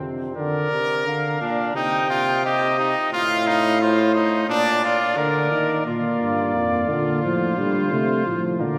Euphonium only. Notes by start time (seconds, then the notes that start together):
0.02 C3
0.37 D3
0.72 C3
1.06 D3
1.41 A#2
1.75 C3
3.12 A2
4.48 A#2
5.16 D3
5.51 D#3
5.86 A#3
6.90 D3
7.24 F3
7.58 G3
7.93 A3
8.27 F3
8.61 D3